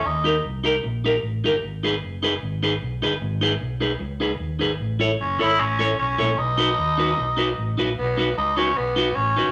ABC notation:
X:1
M:4/4
L:1/16
Q:"Swing" 1/4=151
K:Bmix
V:1 name="Clean electric guitar"
z2 [D=G^A] z3 [DGA] z3 [DGA] z3 [DGA] z | z2 [DGB] z3 [DGB] z3 [DGB] z3 [DGB] z | z2 [DGB] z3 [DGB] z3 [DGB] z3 [DGB] z | z2 [EAc] z3 [EAc] z3 [EAc] z3 [EAc] z |
z2 [DFB] z3 [DFB] z3 [DFB] z3 [DFB] z | z2 [DFB] z3 [DFB] z3 [DFB] z3 [DFB] z |]
V:2 name="Tenor saxophone"
D4 z12 | z16 | z16 | z4 C2 E2 C4 C4 |
D12- D2 z2 | B,4 D2 C2 B,4 C4 |]
V:3 name="Fingered electric bass" clef=bass
D,,4 =C,,4 ^A,,,4 =A,,,2 =G,,,2 | G,,,4 F,,,4 G,,,4 B,,,2 =G,,,2 | G,,,4 B,,,4 C,,4 D,,2 G,,,2 | A,,,4 F,,,2 G,,,2 A,,,4 B,,,2 ^A,,,2 |
B,,,4 D,,4 B,,,4 A,,,2 ^A,,,2 | B,,,4 C,,4 B,,,4 A,,,2 =G,,,2 |]